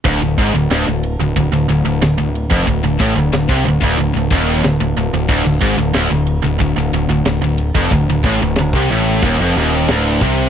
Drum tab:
CC |----------------|----------------|x---------------|----------------|
RD |x-x-x-x-x-x-x-x-|x-x-x-x-x-x-x-x-|--x-x-x-x-x-x-x-|x-x-x-x-x-x-x-x-|
SD |----o-------o---|----o-------o---|----o-------o---|----o-------o---|
BD |o-o-----o------o|o-o--o-o--o-----|o-o-----o------o|o-o--o--o-----o-|